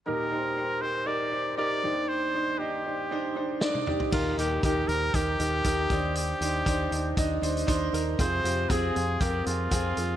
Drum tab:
CC |----------------|----------------|x---------------|----------------|
HH |----------------|----------------|--x-x-x-x-x-x-x-|x-x-x-x-x-xxx-x-|
SD |----------------|------------o---|----------------|----------------|
T1 |----------------|-------------o--|----------------|----------------|
T2 |----------------|--------------o-|----------------|----------------|
FT |----------------|---------------o|----------------|----------------|
BD |----------------|----------------|o---o---o---o-o-|----o---o---o---|

CC |----------------|
HH |x-x-x-x-x-x-x-x-|
SD |----------------|
T1 |----------------|
T2 |----------------|
FT |----------------|
BD |o---o---o---o---|